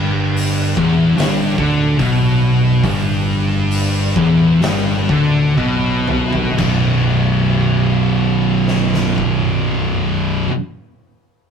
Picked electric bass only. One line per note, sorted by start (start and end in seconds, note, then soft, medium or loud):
0.00 0.72 G1 medium
0.77 1.14 E1 medium
1.17 1.55 G1 loud
1.58 1.96 D2 loud
1.99 2.80 B1 loud
2.83 4.12 G1 loud
4.16 4.59 E1 medium
4.64 5.07 G1 loud
5.09 5.54 D2 loud
5.57 6.54 B1 loud
6.58 10.45 B0 medium